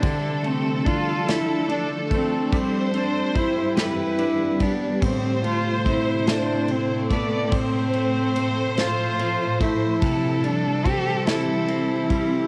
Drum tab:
RD |xxxxxx|xxxxxx|xxxxxx|xxxxxx|
SD |---o--|---o--|---o--|---o--|
BD |o-o--o|o-o--o|o-o--o|o----o|

RD |xxxxxx|
SD |---o--|
BD |o-o--o|